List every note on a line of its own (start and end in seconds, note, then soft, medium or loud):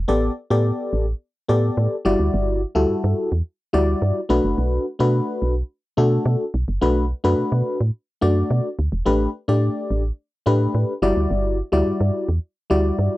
0.08 0.30 A1 loud
0.08 0.32 B3 medium
0.08 0.32 G4 medium
0.08 0.32 A4 medium
0.08 0.32 D5 medium
0.50 0.72 A2 medium
0.50 1.06 B3 medium
0.50 1.06 G4 medium
0.50 1.06 A4 medium
0.50 1.06 D5 medium
0.93 1.14 A1 medium
1.48 1.70 A2 medium
1.48 1.96 B3 medium
1.48 1.96 G4 medium
1.48 1.96 A4 medium
1.48 1.96 D5 medium
1.77 1.88 A2 loud
2.05 2.16 G1 medium
2.05 2.61 G3 medium
2.05 2.61 E4 medium
2.05 2.61 F#4 medium
2.05 2.61 D5 medium
2.19 2.30 D2 medium
2.34 2.65 G1 loud
2.75 2.86 D2 medium
2.75 3.30 G3 medium
2.75 3.30 E4 medium
2.75 3.30 F#4 medium
2.75 3.30 A4 medium
3.04 3.14 G2 loud
3.32 3.42 E2 medium
3.73 3.95 D2 medium
3.73 4.20 G3 medium
3.73 4.20 E4 medium
3.73 4.21 F#4 medium
3.73 4.21 D5 medium
4.02 4.12 G2 loud
4.29 4.40 B1 loud
4.29 4.85 A3 medium
4.29 4.86 D4 medium
4.29 4.86 F#4 medium
4.29 4.86 B4 medium
4.44 4.54 F#1 medium
4.58 4.79 B1 loud
4.99 5.21 B2 medium
4.99 5.54 A3 medium
4.99 5.55 D4 medium
4.99 5.55 F#4 medium
4.99 5.55 B4 medium
5.42 5.63 B1 medium
5.97 6.19 B2 medium
5.97 6.44 A3 medium
5.97 6.45 D4 medium
5.97 6.45 F#4 medium
5.97 6.45 A4 medium
6.26 6.36 B2 loud
6.54 6.64 B1 loud
6.68 6.79 F#1 medium
6.81 7.14 B1 loud
6.81 7.05 A3 medium
6.81 7.05 D4 medium
6.81 7.05 F#4 medium
6.81 7.06 B4 medium
7.24 7.35 F#2 medium
7.24 7.79 A3 medium
7.24 7.79 D4 medium
7.24 7.79 F#4 medium
7.24 7.79 B4 medium
7.38 7.44 B2 soft
7.52 7.62 B2 medium
7.81 7.91 A2 medium
8.21 8.43 F#2 loud
8.21 8.69 A3 medium
8.21 8.69 D4 medium
8.21 8.69 F#4 medium
8.21 8.69 D5 medium
8.51 8.61 B2 medium
8.79 8.89 D2 medium
8.92 9.03 E1 medium
9.06 9.27 A1 loud
9.06 9.29 A3 medium
9.06 9.30 D4 medium
9.06 9.30 G4 medium
9.06 9.30 B4 medium
9.48 9.69 A2 medium
9.48 10.03 A3 medium
9.48 10.03 D4 medium
9.48 10.03 G4 medium
9.48 10.03 D5 medium
9.91 10.11 A1 medium
10.46 10.67 A2 medium
10.46 10.93 A3 medium
10.46 10.93 D4 medium
10.46 10.93 G4 medium
10.46 10.94 B4 medium
10.75 10.85 A2 medium
11.02 11.13 G1 loud
11.02 11.58 G3 medium
11.02 11.58 E4 medium
11.02 11.59 F#4 medium
11.02 11.59 D5 medium
11.16 11.27 D2 medium
11.31 11.62 G1 loud
11.72 11.83 D2 medium
11.72 12.27 G3 medium
11.72 12.27 E4 medium
11.72 12.27 F#4 medium
11.72 12.28 D5 medium
11.87 11.92 G2 soft
12.00 12.11 G2 loud
12.29 12.39 E2 medium
12.70 12.92 D2 medium
12.70 13.17 G3 medium
12.70 13.17 E4 medium
12.70 13.17 F#4 medium
12.70 13.17 D5 medium
12.99 13.09 G2 medium